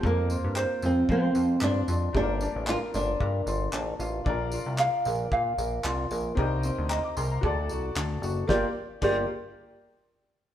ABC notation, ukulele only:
X:1
M:4/4
L:1/8
Q:"Swing 16ths" 1/4=113
K:Gm
V:1 name="Ukulele"
B C c F c F C F | G D B F B F D F | d F f B f B F B | G C e B A ^F D F |
[FGBd] z [FGBd] z4 z |]